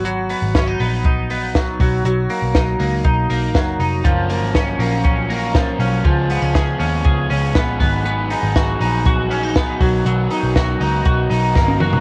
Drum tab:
HH |x-o-x-o-x-o-x-o-|x-o-x-o-x-o-x-o-|x-o-x-o-x-o-x-o-|x-o-x-o-x-o-x-o-|
SD |----o-------o---|----o-------o---|----o-------o---|----o-------o---|
T1 |----------------|----------------|----------------|----------------|
T2 |----------------|----------------|----------------|----------------|
FT |----------------|----------------|----------------|----------------|
BD |----o---o---o-o-|----o---o---o---|o---o---o---o---|o---o---o---o-o-|

HH |x-o-x-o-x-o-x-o-|x-o-x-o-x-o-----|
SD |----o-------o---|----o-------o---|
T1 |----------------|-------------o--|
T2 |----------------|--------------o-|
FT |----------------|---------------o|
BD |----o---o---o-o-|----o---o---o---|